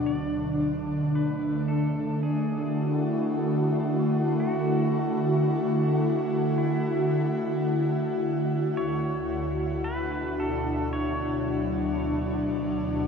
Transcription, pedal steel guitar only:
X:1
M:4/4
L:1/8
Q:1/4=55
K:Dlyd
V:1 name="Pedal steel guitar"
d2 B A G4 | F4 E3 z | c2 B A c4 |]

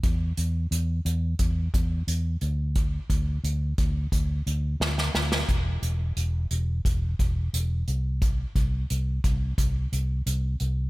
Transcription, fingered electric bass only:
X:1
M:4/4
L:1/8
Q:1/4=88
K:Dmix
V:1 name="Fingered electric bass" clef=bass
E,, E,, E,, E,, E,, E,, E,, D,,- | D,, D,, D,, D,, D,, D,, D,, D,, | E,,, E,,, E,,, E,,, E,,, E,,, E,,, C,,- | C,, C,, C,, C,, C,, C,, C,, C,, |]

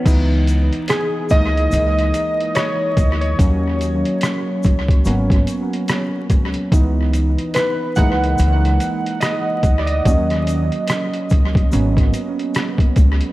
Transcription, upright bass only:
X:1
M:4/4
L:1/16
Q:"Swing 16ths" 1/4=72
K:C#dor
V:1 name="Upright bass" clef=bass
C,,3 z3 C,,2 C,,2 z4 =D,,2 | D,,3 z3 C,,2 G,,,2 z4 C,, z | C,,3 z3 C,,2 C,,2 z4 =D,,2 | D,,3 z3 C,,2 G,,,2 z4 C,, z |]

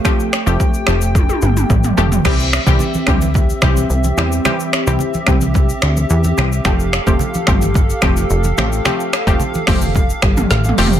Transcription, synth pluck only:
X:1
M:4/4
L:1/16
Q:1/4=109
K:C
V:1 name="Synth pluck"
[F,A,CG]2 z [F,A,CG]3 [F,A,CG]2 z6 [F,A,CG]2 | [E,G,CG]2 z [E,G,CG]3 [E,G,CG]2 z2 [E,G,CG]2 z2 [E,G,CG]2 | [E,G,CG]2 z [E,G,CG]3 [E,G,CG]2 z6 [E,G,CG]2 | [F,A,CG]2 z [F,A,CG]3 [F,A,CG]2 z2 [F,A,CG]2 z2 [F,A,CG]2 |
[F,A,CG]2 z [F,A,CG]3 [F,A,CG]2 z6 [F,A,CG]2 |]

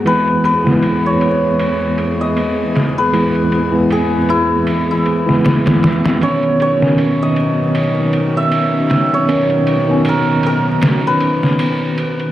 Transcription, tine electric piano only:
X:1
M:4/4
L:1/16
Q:"Swing 16ths" 1/4=78
K:Elyd
V:1 name="Tine electric piano" clef=bass
[E,G,B,]3 [E,G,B,]12- [E,G,B,] | [E,G,B,]3 [E,G,B,]8 [E,G,B,]4- [E,G,B,] | [D,B,C]3 [D,B,C]12- [D,B,C] | [D,B,C]3 [D,B,C]12- [D,B,C] |]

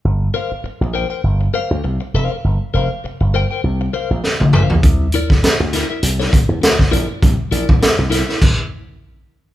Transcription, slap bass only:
X:1
M:4/4
L:1/16
Q:"Swing 16ths" 1/4=100
K:Gdor
V:1 name="Slap bass" clef=bass
G,,,2 z3 B,,,2 z G,,,2 z D,, C,, z F,,, z | G,,, z F,,, z2 G,,,2 z C,,2 z B,,, z B,,, A,,, B,,, | C,,2 z3 D,,2 z C,,2 z E,, D,, z B,,, z | C,, z B,,, z2 C,,2 z8 z |]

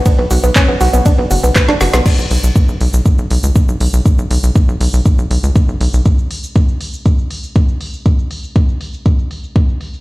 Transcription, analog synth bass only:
X:1
M:4/4
L:1/16
Q:1/4=120
K:Bm
V:1 name="Analog synth bass" clef=bass
z B,,, B,,, B,,, z B,,, B,,, B,,, z B,,, F,,, B,,, z B,,, F,,, B,,, | z B,,, B,,, B,,, z B,,, B,,, B,,, z B,,, B,,, C,, z B,,, B,,, B,,, | z B,,, B,,, B,,, z B,,, B,,, B,,, z B,,, B,,, C,, z B,,, B,,, B,,, | z16 |
z16 |]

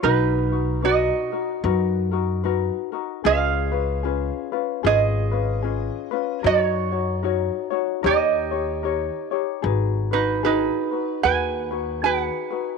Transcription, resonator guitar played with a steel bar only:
X:1
M:4/4
L:1/8
Q:"Swing" 1/4=75
K:Blyd
V:1 name="Resonator guitar played with a steel bar"
[DB]2 [Fd]4 z2 | [Ge]4 [Gd]4 | [Fc]4 [=Gd]3 z | [K:G#phr] z [DB] [DB]2 [Bg]2 [Bf]2 |]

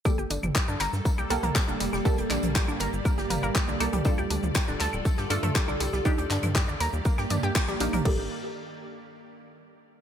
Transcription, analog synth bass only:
X:1
M:4/4
L:1/16
Q:1/4=120
K:Gm
V:1 name="Analog synth bass" clef=bass
z G,,, G,,, G,,, z G,, G,,, G,, z C,, C,, C,, z F,,, F,,, F,,, | z F,,, B,,, B,,,2 G,,, G,,, G,,, z G,,, G,,, G,,, z C,, C,, C,, | z D,, D,, D,, z D,,, D,, D,,, z G,, G,, G,, z C,, C,, C,, | z E,, G,, G,,2 E,, E,, E,, z G,, G,, G,, z B,,, B,,, B,,, |
G,,,2 z12 z2 |]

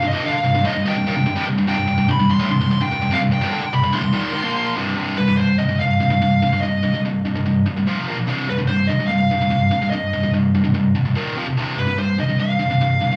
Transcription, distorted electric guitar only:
X:1
M:4/4
L:1/16
Q:1/4=145
K:Cm
V:1 name="Distorted electric guitar" clef=bass
[C,,G,,] [C,,G,,] [G,,D,] z [C,,G,,] [C,,G,,] [D,,=A,,] [C,,G,,] [C,,G,,] [C,,G,,] [E,,B,,] [C,,G,,] [C,,G,,] [C,,G,,] [C,,G,,] [C,,G,,] | [C,,G,,] [C,,G,,] [C,,G,,] [C,,G,,] [C,,G,,] [C,,G,,] [C,,G,,] [D,,=A,,] [C,,G,,] [C,,G,,] [C,,G,,] [C,,G,,] [C,,G,,] [C,,G,,] [F,,C,] [C,,G,,] | [C,,G,,] [C,,G,,] [G,,D,] z [C,,G,,] [C,,G,,] [D,,=A,,] [C,,G,,] [E,,B,,E,]2 [_A,,E,] [B,,F,B,]3 [C,,G,,C,]2 | [C,,G,,C,]2 [C,,G,,] [C,,G,,] [C,,G,,]2 [C,,G,,] [C,,G,,] [C,,G,,]2 [C,,G,,] [C,,G,,] [C,,G,,]2 [C,,G,,] [C,,G,,] |
[C,,G,,]2 [C,,G,,] [C,,G,,] [C,,G,,]2 [C,,G,,] [C,,G,,] [C,,G,,]2 [C,,G,,] [C,,G,,] [F,,C,F,]2 [B,,F,B,] [B,,F,] | [C,,G,,C,]2 [C,,G,,] [C,,G,,] [C,,G,,]2 [C,,G,,] [C,,G,,] [C,,G,,]2 [C,,G,,] [C,,G,,] [C,,G,,]2 [C,,G,,] [C,,G,,] | [C,,G,,]2 [C,,G,,] [C,,G,,] [C,,G,,]2 [C,,G,,] [C,,G,,] [C,,G,,]2 [C,,G,,] [C,,G,,] [E,,B,,E,]2 [F,,C,F,] [F,,C,] | [C,,G,,C,]2 [C,,G,,] [C,,G,,] [C,,G,,]2 [C,,G,,] [C,,G,,] [C,,G,,]2 [C,,G,,] [C,,G,,] [C,,G,,]2 [C,,G,,] [C,,G,,] |]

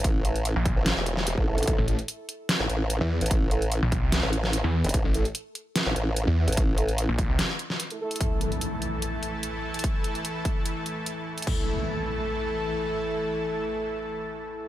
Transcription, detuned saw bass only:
X:1
M:4/4
L:1/16
Q:"Swing 16ths" 1/4=147
K:Cmix
V:1 name="Detuned saw bass" clef=bass
z4 z B,,,2 z8 z | z A,,,2 z8 z2 E,,2 z | z4 z B,,,2 C,,2 z4 E,,2 z | z A,,,2 z8 z2 E,,2 z |
z4 z B,,,2 C,, z8 | z16 | z16 | z16 |
z16 |]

